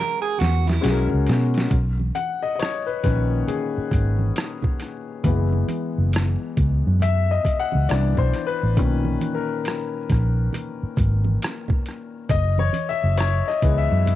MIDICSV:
0, 0, Header, 1, 6, 480
1, 0, Start_track
1, 0, Key_signature, 5, "major"
1, 0, Tempo, 882353
1, 930, Time_signature, 4, 2, 24, 8
1, 7700, End_track
2, 0, Start_track
2, 0, Title_t, "Grand piano"
2, 0, Program_c, 0, 0
2, 0, Control_c, 0, 64, 127
2, 0, Note_on_c, 0, 56, 72
2, 0, Note_on_c, 0, 61, 65
2, 0, Note_on_c, 0, 66, 71
2, 0, Note_on_c, 0, 70, 81
2, 419, Note_off_c, 0, 56, 0
2, 424, Note_off_c, 0, 61, 0
2, 431, Note_off_c, 0, 66, 0
2, 438, Note_off_c, 0, 70, 0
2, 440, Note_on_c, 0, 56, 80
2, 445, Note_on_c, 0, 61, 75
2, 451, Note_on_c, 0, 66, 66
2, 458, Control_c, 0, 64, 0
2, 458, Note_on_c, 0, 68, 66
2, 494, Note_on_c, 0, 70, 75
2, 499, Note_off_c, 0, 68, 0
2, 567, Control_c, 0, 64, 127
2, 925, Note_off_c, 0, 56, 0
2, 928, Note_off_c, 0, 61, 0
2, 931, Note_off_c, 0, 66, 0
2, 938, Control_c, 0, 64, 0
2, 952, Note_off_c, 0, 70, 0
2, 1018, Control_c, 0, 64, 127
2, 1169, Note_on_c, 0, 78, 90
2, 1319, Note_on_c, 0, 75, 85
2, 1325, Note_off_c, 0, 78, 0
2, 1381, Note_off_c, 0, 75, 0
2, 1389, Note_on_c, 0, 75, 69
2, 1410, Note_on_c, 0, 73, 77
2, 1411, Note_off_c, 0, 75, 0
2, 1558, Note_on_c, 0, 71, 68
2, 1566, Note_off_c, 0, 73, 0
2, 1642, Note_off_c, 0, 71, 0
2, 1650, Note_on_c, 0, 71, 79
2, 1651, Note_on_c, 0, 51, 47
2, 1654, Note_on_c, 0, 46, 44
2, 1659, Note_on_c, 0, 61, 61
2, 1890, Note_on_c, 0, 68, 69
2, 1897, Note_off_c, 0, 71, 0
2, 2589, Note_off_c, 0, 68, 0
2, 2829, Note_off_c, 0, 51, 0
2, 2830, Note_off_c, 0, 46, 0
2, 2833, Note_off_c, 0, 61, 0
2, 2855, Note_on_c, 0, 52, 53
2, 2858, Control_c, 0, 64, 0
2, 2858, Note_on_c, 0, 56, 50
2, 2863, Note_on_c, 0, 59, 62
2, 2962, Control_c, 0, 64, 127
2, 3196, Note_off_c, 0, 52, 0
2, 3197, Note_off_c, 0, 56, 0
2, 3200, Note_off_c, 0, 59, 0
2, 3818, Note_on_c, 0, 76, 92
2, 3976, Note_on_c, 0, 75, 84
2, 3979, Note_off_c, 0, 76, 0
2, 4131, Note_on_c, 0, 78, 101
2, 4138, Note_off_c, 0, 75, 0
2, 4291, Note_on_c, 0, 74, 90
2, 4295, Note_on_c, 0, 52, 55
2, 4296, Note_off_c, 0, 78, 0
2, 4297, Control_c, 0, 64, 0
2, 4298, Note_on_c, 0, 59, 51
2, 4299, Note_on_c, 0, 62, 64
2, 4394, Control_c, 0, 64, 127
2, 4439, Note_off_c, 0, 74, 0
2, 4451, Note_on_c, 0, 72, 82
2, 4606, Note_on_c, 0, 71, 98
2, 4615, Note_off_c, 0, 72, 0
2, 4751, Note_off_c, 0, 52, 0
2, 4752, Note_off_c, 0, 59, 0
2, 4753, Note_off_c, 0, 62, 0
2, 4768, Note_on_c, 0, 51, 54
2, 4773, Note_on_c, 0, 46, 52
2, 4776, Note_on_c, 0, 61, 55
2, 4777, Control_c, 0, 64, 0
2, 4866, Control_c, 0, 64, 127
2, 5066, Note_off_c, 0, 71, 0
2, 5083, Note_on_c, 0, 70, 72
2, 5112, Note_off_c, 0, 51, 0
2, 5115, Note_off_c, 0, 46, 0
2, 5116, Note_off_c, 0, 61, 0
2, 5545, Note_off_c, 0, 70, 0
2, 6693, Note_on_c, 0, 75, 103
2, 6697, Control_c, 0, 64, 0
2, 6786, Control_c, 0, 64, 127
2, 6849, Note_on_c, 0, 73, 87
2, 6856, Note_off_c, 0, 75, 0
2, 7012, Note_on_c, 0, 76, 97
2, 7015, Note_off_c, 0, 73, 0
2, 7168, Note_on_c, 0, 73, 88
2, 7176, Note_off_c, 0, 76, 0
2, 7332, Note_on_c, 0, 75, 91
2, 7334, Note_off_c, 0, 73, 0
2, 7411, Note_on_c, 0, 52, 59
2, 7415, Note_on_c, 0, 56, 50
2, 7418, Note_on_c, 0, 59, 62
2, 7496, Note_off_c, 0, 75, 0
2, 7496, Note_on_c, 0, 76, 98
2, 7700, Note_off_c, 0, 52, 0
2, 7700, Note_off_c, 0, 56, 0
2, 7700, Note_off_c, 0, 59, 0
2, 7700, Note_off_c, 0, 76, 0
2, 7700, End_track
3, 0, Start_track
3, 0, Title_t, "Clean electric guitar"
3, 0, Program_c, 1, 27
3, 0, Note_on_c, 1, 70, 76
3, 113, Note_off_c, 1, 70, 0
3, 119, Note_on_c, 1, 68, 76
3, 211, Note_off_c, 1, 68, 0
3, 211, Note_on_c, 1, 66, 72
3, 365, Note_off_c, 1, 66, 0
3, 365, Note_on_c, 1, 64, 78
3, 591, Note_off_c, 1, 64, 0
3, 7700, End_track
4, 0, Start_track
4, 0, Title_t, "Fingered electric bass"
4, 0, Program_c, 2, 33
4, 222, Note_on_c, 2, 40, 83
4, 422, Note_off_c, 2, 40, 0
4, 461, Note_on_c, 2, 35, 96
4, 585, Note_off_c, 2, 35, 0
4, 615, Note_on_c, 2, 37, 69
4, 685, Note_off_c, 2, 37, 0
4, 702, Note_on_c, 2, 47, 96
4, 902, Note_off_c, 2, 47, 0
4, 937, Note_on_c, 2, 35, 98
4, 1139, Note_off_c, 2, 35, 0
4, 1659, Note_on_c, 2, 34, 81
4, 1860, Note_off_c, 2, 34, 0
4, 2135, Note_on_c, 2, 32, 79
4, 2338, Note_off_c, 2, 32, 0
4, 2857, Note_on_c, 2, 30, 102
4, 3059, Note_off_c, 2, 30, 0
4, 3254, Note_on_c, 2, 30, 75
4, 3454, Note_off_c, 2, 30, 0
4, 3582, Note_on_c, 2, 37, 91
4, 3706, Note_off_c, 2, 37, 0
4, 3737, Note_on_c, 2, 42, 95
4, 4012, Note_off_c, 2, 42, 0
4, 4215, Note_on_c, 2, 37, 79
4, 4286, Note_off_c, 2, 37, 0
4, 4304, Note_on_c, 2, 36, 95
4, 4427, Note_off_c, 2, 36, 0
4, 4451, Note_on_c, 2, 35, 86
4, 4523, Note_off_c, 2, 35, 0
4, 4695, Note_on_c, 2, 33, 88
4, 4778, Note_off_c, 2, 33, 0
4, 4778, Note_on_c, 2, 35, 108
4, 4980, Note_off_c, 2, 35, 0
4, 5499, Note_on_c, 2, 34, 88
4, 5701, Note_off_c, 2, 34, 0
4, 5975, Note_on_c, 2, 32, 86
4, 6178, Note_off_c, 2, 32, 0
4, 6695, Note_on_c, 2, 30, 111
4, 6898, Note_off_c, 2, 30, 0
4, 7092, Note_on_c, 2, 30, 80
4, 7293, Note_off_c, 2, 30, 0
4, 7420, Note_on_c, 2, 37, 82
4, 7545, Note_off_c, 2, 37, 0
4, 7570, Note_on_c, 2, 42, 100
4, 7700, Note_off_c, 2, 42, 0
4, 7700, End_track
5, 0, Start_track
5, 0, Title_t, "Muted fingered electric bass strokes"
5, 2055, Note_on_c, 9, 29, 44
5, 2109, Note_off_c, 9, 29, 0
5, 4057, Note_on_c, 9, 29, 44
5, 4112, Note_off_c, 9, 29, 0
5, 5892, Note_on_c, 9, 29, 47
5, 5946, Note_off_c, 9, 29, 0
5, 7700, End_track
6, 0, Start_track
6, 0, Title_t, "Drums"
6, 206, Note_on_c, 9, 62, 30
6, 218, Note_on_c, 9, 42, 64
6, 226, Note_on_c, 9, 38, 71
6, 261, Note_off_c, 9, 62, 0
6, 272, Note_off_c, 9, 42, 0
6, 280, Note_off_c, 9, 38, 0
6, 359, Note_on_c, 9, 63, 63
6, 366, Note_on_c, 9, 42, 33
6, 377, Note_on_c, 9, 38, 57
6, 413, Note_off_c, 9, 63, 0
6, 420, Note_off_c, 9, 42, 0
6, 431, Note_off_c, 9, 38, 0
6, 455, Note_on_c, 9, 42, 94
6, 467, Note_on_c, 9, 38, 75
6, 510, Note_off_c, 9, 42, 0
6, 521, Note_off_c, 9, 38, 0
6, 596, Note_on_c, 9, 64, 62
6, 650, Note_off_c, 9, 64, 0
6, 688, Note_on_c, 9, 42, 54
6, 696, Note_on_c, 9, 62, 23
6, 704, Note_on_c, 9, 38, 78
6, 742, Note_off_c, 9, 42, 0
6, 750, Note_off_c, 9, 62, 0
6, 758, Note_off_c, 9, 38, 0
6, 838, Note_on_c, 9, 42, 31
6, 858, Note_on_c, 9, 38, 81
6, 892, Note_off_c, 9, 42, 0
6, 912, Note_off_c, 9, 38, 0
6, 929, Note_on_c, 9, 62, 24
6, 929, Note_on_c, 9, 64, 55
6, 930, Note_on_c, 9, 36, 94
6, 930, Note_on_c, 9, 42, 76
6, 983, Note_off_c, 9, 62, 0
6, 983, Note_off_c, 9, 64, 0
6, 984, Note_off_c, 9, 36, 0
6, 985, Note_off_c, 9, 42, 0
6, 1085, Note_on_c, 9, 63, 59
6, 1139, Note_off_c, 9, 63, 0
6, 1169, Note_on_c, 9, 63, 62
6, 1171, Note_on_c, 9, 42, 61
6, 1224, Note_off_c, 9, 63, 0
6, 1226, Note_off_c, 9, 42, 0
6, 1412, Note_on_c, 9, 42, 78
6, 1412, Note_on_c, 9, 62, 29
6, 1428, Note_on_c, 9, 37, 114
6, 1466, Note_off_c, 9, 42, 0
6, 1467, Note_off_c, 9, 62, 0
6, 1482, Note_off_c, 9, 37, 0
6, 1653, Note_on_c, 9, 36, 86
6, 1653, Note_on_c, 9, 42, 53
6, 1655, Note_on_c, 9, 62, 24
6, 1664, Note_on_c, 9, 37, 33
6, 1707, Note_off_c, 9, 36, 0
6, 1707, Note_off_c, 9, 42, 0
6, 1709, Note_off_c, 9, 62, 0
6, 1718, Note_off_c, 9, 37, 0
6, 1891, Note_on_c, 9, 63, 42
6, 1891, Note_on_c, 9, 64, 55
6, 1896, Note_on_c, 9, 42, 72
6, 1946, Note_off_c, 9, 63, 0
6, 1946, Note_off_c, 9, 64, 0
6, 1951, Note_off_c, 9, 42, 0
6, 2128, Note_on_c, 9, 62, 30
6, 2129, Note_on_c, 9, 36, 90
6, 2138, Note_on_c, 9, 42, 61
6, 2183, Note_off_c, 9, 62, 0
6, 2184, Note_off_c, 9, 36, 0
6, 2193, Note_off_c, 9, 42, 0
6, 2278, Note_on_c, 9, 63, 63
6, 2333, Note_off_c, 9, 63, 0
6, 2371, Note_on_c, 9, 62, 25
6, 2372, Note_on_c, 9, 42, 88
6, 2383, Note_on_c, 9, 37, 102
6, 2426, Note_off_c, 9, 62, 0
6, 2427, Note_off_c, 9, 42, 0
6, 2438, Note_off_c, 9, 37, 0
6, 2516, Note_on_c, 9, 64, 68
6, 2525, Note_on_c, 9, 36, 72
6, 2570, Note_off_c, 9, 64, 0
6, 2580, Note_off_c, 9, 36, 0
6, 2610, Note_on_c, 9, 42, 58
6, 2615, Note_on_c, 9, 62, 25
6, 2624, Note_on_c, 9, 37, 31
6, 2664, Note_off_c, 9, 42, 0
6, 2669, Note_off_c, 9, 62, 0
6, 2679, Note_off_c, 9, 37, 0
6, 2849, Note_on_c, 9, 62, 27
6, 2849, Note_on_c, 9, 64, 56
6, 2851, Note_on_c, 9, 36, 98
6, 2851, Note_on_c, 9, 42, 77
6, 2903, Note_off_c, 9, 62, 0
6, 2903, Note_off_c, 9, 64, 0
6, 2905, Note_off_c, 9, 36, 0
6, 2906, Note_off_c, 9, 42, 0
6, 3005, Note_on_c, 9, 63, 70
6, 3060, Note_off_c, 9, 63, 0
6, 3090, Note_on_c, 9, 63, 65
6, 3093, Note_on_c, 9, 42, 56
6, 3145, Note_off_c, 9, 63, 0
6, 3147, Note_off_c, 9, 42, 0
6, 3330, Note_on_c, 9, 62, 30
6, 3336, Note_on_c, 9, 42, 85
6, 3352, Note_on_c, 9, 37, 109
6, 3384, Note_off_c, 9, 62, 0
6, 3390, Note_off_c, 9, 42, 0
6, 3406, Note_off_c, 9, 37, 0
6, 3572, Note_on_c, 9, 62, 24
6, 3575, Note_on_c, 9, 36, 91
6, 3577, Note_on_c, 9, 42, 55
6, 3626, Note_off_c, 9, 62, 0
6, 3629, Note_off_c, 9, 36, 0
6, 3631, Note_off_c, 9, 42, 0
6, 3808, Note_on_c, 9, 63, 44
6, 3808, Note_on_c, 9, 64, 59
6, 3819, Note_on_c, 9, 42, 80
6, 3862, Note_off_c, 9, 63, 0
6, 3862, Note_off_c, 9, 64, 0
6, 3873, Note_off_c, 9, 42, 0
6, 4046, Note_on_c, 9, 62, 30
6, 4051, Note_on_c, 9, 36, 91
6, 4058, Note_on_c, 9, 42, 64
6, 4101, Note_off_c, 9, 62, 0
6, 4105, Note_off_c, 9, 36, 0
6, 4113, Note_off_c, 9, 42, 0
6, 4199, Note_on_c, 9, 63, 66
6, 4253, Note_off_c, 9, 63, 0
6, 4290, Note_on_c, 9, 62, 24
6, 4293, Note_on_c, 9, 42, 97
6, 4304, Note_on_c, 9, 37, 100
6, 4344, Note_off_c, 9, 62, 0
6, 4347, Note_off_c, 9, 42, 0
6, 4358, Note_off_c, 9, 37, 0
6, 4434, Note_on_c, 9, 64, 63
6, 4446, Note_on_c, 9, 36, 78
6, 4488, Note_off_c, 9, 64, 0
6, 4500, Note_off_c, 9, 36, 0
6, 4531, Note_on_c, 9, 62, 26
6, 4534, Note_on_c, 9, 42, 57
6, 4549, Note_on_c, 9, 37, 29
6, 4586, Note_off_c, 9, 62, 0
6, 4588, Note_off_c, 9, 42, 0
6, 4603, Note_off_c, 9, 37, 0
6, 4768, Note_on_c, 9, 62, 25
6, 4768, Note_on_c, 9, 64, 62
6, 4770, Note_on_c, 9, 36, 105
6, 4771, Note_on_c, 9, 42, 77
6, 4822, Note_off_c, 9, 62, 0
6, 4822, Note_off_c, 9, 64, 0
6, 4825, Note_off_c, 9, 36, 0
6, 4826, Note_off_c, 9, 42, 0
6, 4921, Note_on_c, 9, 63, 67
6, 4976, Note_off_c, 9, 63, 0
6, 5006, Note_on_c, 9, 63, 69
6, 5012, Note_on_c, 9, 42, 64
6, 5061, Note_off_c, 9, 63, 0
6, 5066, Note_off_c, 9, 42, 0
6, 5245, Note_on_c, 9, 62, 27
6, 5249, Note_on_c, 9, 42, 84
6, 5265, Note_on_c, 9, 37, 100
6, 5299, Note_off_c, 9, 62, 0
6, 5304, Note_off_c, 9, 42, 0
6, 5319, Note_off_c, 9, 37, 0
6, 5490, Note_on_c, 9, 62, 26
6, 5492, Note_on_c, 9, 36, 93
6, 5494, Note_on_c, 9, 42, 53
6, 5505, Note_on_c, 9, 37, 33
6, 5544, Note_off_c, 9, 62, 0
6, 5547, Note_off_c, 9, 36, 0
6, 5549, Note_off_c, 9, 42, 0
6, 5560, Note_off_c, 9, 37, 0
6, 5727, Note_on_c, 9, 63, 41
6, 5727, Note_on_c, 9, 64, 58
6, 5735, Note_on_c, 9, 42, 82
6, 5781, Note_off_c, 9, 63, 0
6, 5781, Note_off_c, 9, 64, 0
6, 5789, Note_off_c, 9, 42, 0
6, 5964, Note_on_c, 9, 62, 31
6, 5968, Note_on_c, 9, 36, 91
6, 5975, Note_on_c, 9, 42, 65
6, 6018, Note_off_c, 9, 62, 0
6, 6023, Note_off_c, 9, 36, 0
6, 6030, Note_off_c, 9, 42, 0
6, 6116, Note_on_c, 9, 63, 67
6, 6171, Note_off_c, 9, 63, 0
6, 6214, Note_on_c, 9, 42, 91
6, 6225, Note_on_c, 9, 37, 103
6, 6268, Note_off_c, 9, 42, 0
6, 6279, Note_off_c, 9, 37, 0
6, 6354, Note_on_c, 9, 64, 69
6, 6363, Note_on_c, 9, 36, 84
6, 6408, Note_off_c, 9, 64, 0
6, 6418, Note_off_c, 9, 36, 0
6, 6450, Note_on_c, 9, 42, 55
6, 6465, Note_on_c, 9, 37, 32
6, 6505, Note_off_c, 9, 42, 0
6, 6520, Note_off_c, 9, 37, 0
6, 6686, Note_on_c, 9, 64, 61
6, 6688, Note_on_c, 9, 36, 99
6, 6688, Note_on_c, 9, 42, 83
6, 6741, Note_off_c, 9, 64, 0
6, 6742, Note_off_c, 9, 36, 0
6, 6742, Note_off_c, 9, 42, 0
6, 6843, Note_on_c, 9, 63, 74
6, 6898, Note_off_c, 9, 63, 0
6, 6925, Note_on_c, 9, 62, 32
6, 6925, Note_on_c, 9, 63, 70
6, 6930, Note_on_c, 9, 42, 63
6, 6980, Note_off_c, 9, 62, 0
6, 6980, Note_off_c, 9, 63, 0
6, 6984, Note_off_c, 9, 42, 0
6, 7166, Note_on_c, 9, 62, 28
6, 7168, Note_on_c, 9, 42, 94
6, 7184, Note_on_c, 9, 37, 109
6, 7221, Note_off_c, 9, 62, 0
6, 7222, Note_off_c, 9, 42, 0
6, 7238, Note_off_c, 9, 37, 0
6, 7341, Note_on_c, 9, 37, 34
6, 7396, Note_off_c, 9, 37, 0
6, 7411, Note_on_c, 9, 42, 59
6, 7412, Note_on_c, 9, 36, 90
6, 7466, Note_off_c, 9, 36, 0
6, 7466, Note_off_c, 9, 42, 0
6, 7650, Note_on_c, 9, 62, 30
6, 7650, Note_on_c, 9, 63, 43
6, 7650, Note_on_c, 9, 64, 62
6, 7657, Note_on_c, 9, 42, 81
6, 7700, Note_off_c, 9, 42, 0
6, 7700, Note_off_c, 9, 62, 0
6, 7700, Note_off_c, 9, 63, 0
6, 7700, Note_off_c, 9, 64, 0
6, 7700, End_track
0, 0, End_of_file